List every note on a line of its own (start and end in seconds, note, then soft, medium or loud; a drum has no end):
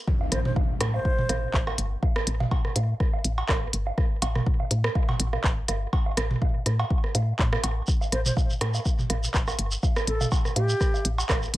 0.07 kick loud
0.07 impact medium
0.21 low woodblock soft
0.32 0.50 A1 medium
0.32 0.40 C5 medium
0.32 cross-stick soft
0.32 closed hi-hat medium
0.45 0.52 C5 medium
0.45 mid tom medium
0.56 kick loud
0.56 low woodblock soft
0.81 0.99 A2 medium
0.81 cross-stick medium
0.81 closed hi-hat medium
0.81 cowbell medium
0.94 1.62 C5 loud
0.94 low woodblock soft
1.05 kick loud
1.18 mid tom medium
1.29 1.48 A1 loud
1.29 cross-stick soft
1.29 closed hi-hat medium
1.29 low woodblock soft
1.54 1.72 A1 loud
1.54 kick loud
1.54 clap loud
1.67 cross-stick soft
1.67 cowbell medium
1.67 low woodblock soft
1.78 1.96 G1 medium
1.78 closed hi-hat medium
2.03 kick loud
2.03 low woodblock soft
2.16 cross-stick medium
2.27 2.45 A1 loud
2.27 closed hi-hat loud
2.40 mid tom medium
2.40 low woodblock soft
2.51 kick loud
2.51 cowbell medium
2.65 cross-stick soft
2.76 2.94 A2 medium
2.76 closed hi-hat loud
2.76 low woodblock soft
3.00 kick loud
3.00 cross-stick soft
3.14 low woodblock soft
3.25 3.43 A1 loud
3.25 closed hi-hat loud
3.38 cowbell medium
3.49 3.67 A1 loud
3.49 kick loud
3.49 cross-stick medium
3.49 clap loud
3.49 low woodblock soft
3.73 3.92 G1 medium
3.73 closed hi-hat loud
3.87 low woodblock soft
3.98 kick loud
3.98 cross-stick soft
4.22 4.40 A1 loud
4.22 closed hi-hat loud
4.22 cowbell medium
4.22 low woodblock soft
4.35 cross-stick soft
4.35 mid tom medium
4.46 kick loud
4.60 low woodblock soft
4.71 4.89 A2 medium
4.71 closed hi-hat loud
4.84 cross-stick medium
4.95 kick loud
4.95 low woodblock soft
5.09 mid tom medium
5.09 cowbell medium
5.20 5.38 A1 loud
5.20 closed hi-hat loud
5.33 cross-stick soft
5.33 low woodblock soft
5.44 5.62 A1 loud
5.44 kick loud
5.44 clap loud
5.68 5.87 G1 medium
5.68 cross-stick soft
5.68 closed hi-hat loud
5.68 low woodblock soft
5.93 kick loud
5.93 cowbell medium
6.06 low woodblock soft
6.17 6.35 A1 loud
6.17 cross-stick medium
6.17 closed hi-hat loud
6.31 mid tom medium
6.42 kick loud
6.42 low woodblock soft
6.66 6.84 A2 medium
6.66 cross-stick soft
6.66 closed hi-hat loud
6.79 cowbell medium
6.79 low woodblock soft
6.90 kick loud
7.04 cross-stick soft
7.15 7.33 A2 medium
7.15 closed hi-hat loud
7.15 low woodblock soft
7.39 7.57 A2 loud
7.39 kick loud
7.39 clap loud
7.53 cross-stick medium
7.53 low woodblock soft
7.64 7.82 A1 loud
7.64 closed hi-hat loud
7.64 cowbell medium
7.87 kick loud
7.87 shekere medium
8.01 low woodblock soft
8.01 shekere soft
8.12 8.31 A1 loud
8.12 8.21 C5 medium
8.12 cross-stick soft
8.12 closed hi-hat medium
8.26 8.33 C5 medium
8.26 mid tom medium
8.26 shekere medium
8.37 kick loud
8.37 low woodblock soft
8.37 shekere medium
8.50 shekere soft
8.61 8.79 A2 medium
8.61 cross-stick medium
8.61 closed hi-hat medium
8.61 cowbell medium
8.74 low woodblock soft
8.74 shekere medium
8.85 kick loud
8.85 shekere medium
8.99 mid tom medium
8.99 shekere soft
9.10 9.28 A1 loud
9.10 cross-stick soft
9.10 closed hi-hat medium
9.10 low woodblock soft
9.24 shekere medium
9.34 9.53 A1 loud
9.34 kick loud
9.34 clap loud
9.34 shekere medium
9.48 cross-stick soft
9.48 cowbell medium
9.48 low woodblock soft
9.48 shekere soft
9.59 9.77 G1 medium
9.59 closed hi-hat medium
9.71 shekere medium
9.83 kick loud
9.83 low woodblock soft
9.83 shekere medium
9.96 cross-stick medium
9.96 shekere soft
10.07 10.26 A1 loud
10.07 10.27 A4 medium
10.07 closed hi-hat medium
10.21 mid tom medium
10.21 low woodblock soft
10.21 shekere medium
10.32 kick loud
10.32 cowbell medium
10.32 shekere medium
10.45 cross-stick soft
10.45 shekere soft
10.56 10.74 A2 medium
10.56 11.05 G4 loud
10.56 closed hi-hat medium
10.56 low woodblock soft
10.69 shekere medium
10.81 kick loud
10.81 cross-stick soft
10.81 shekere medium
10.94 low woodblock soft
10.94 shekere soft
11.05 11.23 A1 loud
11.05 closed hi-hat medium
11.18 cowbell medium
11.18 shekere medium
11.29 11.48 A1 loud
11.29 kick loud
11.29 cross-stick medium
11.29 clap loud
11.29 low woodblock soft
11.29 shekere medium
11.43 shekere soft
11.54 11.57 G1 medium
11.54 closed hi-hat medium